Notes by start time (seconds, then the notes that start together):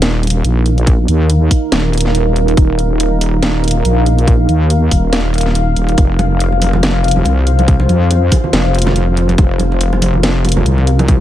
Already playing: D#1 D#4 A#4 F5
0.02 snare, closed hi-hat
0.23 closed hi-hat
0.27 closed hi-hat
0.30 closed hi-hat
0.45 A#1, closed hi-hat
0.66 closed hi-hat
0.78 closed hi-hat
0.87 kick, closed hi-hat
1.08 D#2, closed hi-hat
1.30 closed hi-hat
1.51 kick, open hi-hat
1.72 D#1, snare, closed hi-hat
1.93 closed hi-hat
1.98 closed hi-hat
2.01 closed hi-hat
2.06 snare
2.15 closed hi-hat
2.36 closed hi-hat
2.48 closed hi-hat
2.57 D#1, kick, closed hi-hat
2.79 closed hi-hat
3.00 closed hi-hat
3.21 open hi-hat
3.43 snare, closed hi-hat
3.64 closed hi-hat
3.68 closed hi-hat
3.71 closed hi-hat
3.85 A#1, closed hi-hat
4.06 closed hi-hat
4.18 closed hi-hat
4.28 kick, closed hi-hat
4.49 D#2, closed hi-hat
4.70 closed hi-hat
4.91 D#1, kick, open hi-hat
5.13 snare, closed hi-hat
5.34 closed hi-hat
5.38 closed hi-hat
5.41 closed hi-hat
5.46 snare
5.55 closed hi-hat
5.76 D#1, closed hi-hat
5.89 closed hi-hat
5.97 F1 F4 C5, kick, closed hi-hat, muted conga
6.19 closed hi-hat, muted conga, high conga
6.40 closed hi-hat
6.52 muted conga
6.62 open hi-hat, high conga
6.73 muted conga, low conga
6.83 snare, closed hi-hat
7.04 closed hi-hat, muted conga
7.08 closed hi-hat
7.11 closed hi-hat
7.16 high conga, low conga
7.25 C2, closed hi-hat, muted conga
7.47 closed hi-hat
7.59 closed hi-hat, muted conga, high conga
7.68 kick, closed hi-hat
7.80 muted conga
7.89 F2, closed hi-hat, high conga
8.11 closed hi-hat, muted conga
8.31 kick, open hi-hat, muted conga, high conga
8.44 low conga
8.53 F1, snare, closed hi-hat
8.65 muted conga
8.75 closed hi-hat
8.79 closed hi-hat
8.82 closed hi-hat
8.86 snare, muted conga, high conga, low conga
8.96 closed hi-hat
9.17 closed hi-hat, muted conga
9.29 closed hi-hat, high conga
9.38 F1 A#4, kick, closed hi-hat, muted conga
9.59 closed hi-hat, high conga
9.72 muted conga
9.81 closed hi-hat
9.93 muted conga
10.02 open hi-hat, high conga
10.14 low conga
10.23 snare, closed hi-hat, muted conga
10.45 closed hi-hat, muted conga
10.49 closed hi-hat
10.52 closed hi-hat
10.57 high conga, low conga
10.66 C2, closed hi-hat
10.78 muted conga
10.87 closed hi-hat
10.99 closed hi-hat, muted conga, high conga
11.08 kick, closed hi-hat